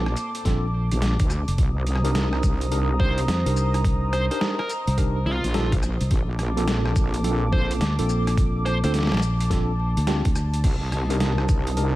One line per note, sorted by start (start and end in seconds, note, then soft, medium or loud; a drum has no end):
0.00 0.15 A#1 loud
0.00 1.55 A#3 medium
0.00 1.54 A5 medium
0.00 1.54 D6 medium
0.06 cross-stick soft
0.17 closed hi-hat soft
0.17 shaker medium
0.35 closed hi-hat medium
0.45 0.89 A#1 loud
0.45 0.65 C4 medium
0.45 0.65 D4 medium
0.45 0.65 F4 medium
0.45 0.65 A4 loud
0.45 kick medium
0.45 snare soft
0.45 closed hi-hat medium
0.91 1.17 A#1 loud
0.91 closed hi-hat medium
1.02 snare loud
1.02 closed hi-hat medium
1.20 1.45 D2 medium
1.20 kick loud
1.20 closed hi-hat medium
1.30 cross-stick soft
1.30 shaker medium
1.48 1.57 F1 medium
1.48 closed hi-hat medium
1.58 2.42 C2 loud
1.58 6.08 C5 medium
1.58 6.08 A#5 medium
1.58 6.07 D#6 loud
1.58 kick loud
1.58 closed hi-hat medium
1.87 closed hi-hat soft
1.96 cross-stick medium
2.05 2.69 D4 medium
2.05 2.69 D#4 medium
2.05 2.69 G4 medium
2.05 2.69 A#4 medium
2.05 closed hi-hat medium
2.15 snare loud
2.15 closed hi-hat medium
2.33 cross-stick medium
2.43 3.26 C2 loud
2.43 kick loud
2.43 closed hi-hat soft
2.43 shaker medium
2.61 closed hi-hat medium
2.71 2.91 D4 medium
2.71 2.91 D#4 medium
2.71 2.91 G4 medium
2.71 2.91 A#4 medium
2.71 closed hi-hat medium
3.00 3.27 D4 medium
3.00 3.27 D#4 medium
3.00 3.27 G4 medium
3.00 3.27 A#4 medium
3.00 3.18 C5 medium
3.00 kick loud
3.18 closed hi-hat medium
3.28 3.43 F2 loud
3.28 snare loud
3.28 closed hi-hat medium
3.46 4.28 C2 loud
3.46 4.27 D4 medium
3.46 4.27 D#4 medium
3.46 4.27 G4 medium
3.46 4.27 A#4 medium
3.46 closed hi-hat medium
3.57 shaker medium
3.74 cross-stick medium
3.74 closed hi-hat medium
3.85 kick loud
3.85 closed hi-hat medium
4.13 4.25 C5 medium
4.13 cross-stick medium
4.13 closed hi-hat soft
4.31 4.57 D4 medium
4.31 4.57 D#4 medium
4.31 4.57 G4 medium
4.31 4.57 A#4 medium
4.31 4.38 C5 medium
4.31 closed hi-hat soft
4.41 snare loud
4.59 4.70 A#4 medium
4.59 cross-stick medium
4.70 closed hi-hat soft
4.70 shaker medium
4.87 5.24 C2 loud
4.87 closed hi-hat medium
4.98 5.18 D4 medium
4.98 5.18 D#4 medium
4.98 5.18 G4 medium
4.98 5.18 A#4 loud
4.98 kick medium
4.98 closed hi-hat medium
5.26 5.41 C2 loud
5.26 5.72 F4 medium
5.44 5.98 A#1 loud
5.44 closed hi-hat medium
5.54 5.74 D4 medium
5.54 5.74 D#4 medium
5.54 5.74 G4 medium
5.54 5.74 A4 loud
5.54 snare loud
5.54 closed hi-hat medium
5.72 kick loud
5.72 closed hi-hat medium
5.83 cross-stick medium
5.83 shaker medium
6.01 6.09 C2 loud
6.01 closed hi-hat medium
6.11 6.94 A#1 loud
6.11 10.60 A#3 medium
6.11 8.35 A5 medium
6.11 10.60 D6 medium
6.11 kick loud
6.11 closed hi-hat medium
6.39 cross-stick medium
6.39 closed hi-hat soft
6.57 7.22 C4 medium
6.57 7.22 D4 medium
6.57 7.22 F4 medium
6.57 7.22 A4 loud
6.57 closed hi-hat soft
6.68 snare loud
6.68 closed hi-hat medium
6.86 cross-stick medium
6.96 kick loud
6.96 closed hi-hat soft
6.96 shaker medium
7.14 closed hi-hat medium
7.24 7.44 C4 medium
7.24 7.44 D4 medium
7.24 7.44 F4 medium
7.24 7.44 A4 medium
7.24 closed hi-hat medium
7.53 7.80 C4 medium
7.53 7.80 D4 medium
7.53 7.80 F4 medium
7.53 7.80 A4 medium
7.53 7.71 C5 medium
7.53 kick loud
7.71 closed hi-hat medium
7.81 7.96 D2 loud
7.81 snare loud
7.81 closed hi-hat medium
7.99 8.81 A#1 medium
7.99 8.80 C4 medium
7.99 8.79 D4 medium
7.99 8.79 F4 medium
7.99 8.80 A4 medium
7.99 closed hi-hat medium
8.09 shaker medium
8.27 cross-stick medium
8.27 closed hi-hat medium
8.37 11.96 A5 medium
8.37 kick loud
8.37 closed hi-hat medium
8.65 8.77 C5 medium
8.65 cross-stick medium
8.65 closed hi-hat soft
8.84 9.09 D2 loud
8.84 9.10 C4 medium
8.84 9.10 D4 medium
8.84 9.10 F4 medium
8.84 9.10 A4 medium
8.84 8.90 C5 medium
8.84 closed hi-hat medium
8.94 snare medium
8.94 closed hi-hat medium
8.99 snare medium
9.03 snare medium
9.07 snare medium
9.12 9.94 A#1 loud
9.12 cross-stick medium
9.12 snare medium
9.14 snare medium
9.17 snare loud
9.20 snare loud
9.20 closed hi-hat soft
9.20 shaker medium
9.40 closed hi-hat medium
9.50 9.70 C4 medium
9.50 9.70 D4 medium
9.50 9.70 F4 medium
9.50 9.70 A4 loud
9.50 kick medium
9.50 snare soft
9.50 closed hi-hat medium
9.97 10.22 D2 medium
9.97 closed hi-hat medium
10.07 10.27 C4 loud
10.07 10.27 D4 medium
10.07 10.27 F4 medium
10.07 10.27 G4 loud
10.07 snare loud
10.07 closed hi-hat medium
10.25 10.62 D2 loud
10.25 kick loud
10.25 closed hi-hat medium
10.36 cross-stick medium
10.36 shaker medium
10.54 closed hi-hat medium
10.64 11.47 C2 loud
10.64 11.96 C5 medium
10.64 11.96 D#6 medium
10.64 kick loud
10.64 closed hi-hat medium
10.64 crash medium
10.92 cross-stick medium
10.92 closed hi-hat soft
11.10 11.74 D4 medium
11.10 11.74 D#4 medium
11.10 11.74 G4 medium
11.10 11.75 A#4 loud
11.10 closed hi-hat medium
11.20 snare loud
11.20 closed hi-hat medium
11.38 cross-stick medium
11.49 11.96 C2 loud
11.49 kick loud
11.49 closed hi-hat soft
11.49 shaker medium
11.67 closed hi-hat medium
11.77 11.96 D4 medium
11.77 11.96 D#4 medium
11.77 11.96 G4 medium
11.77 11.96 A#4 medium
11.77 closed hi-hat medium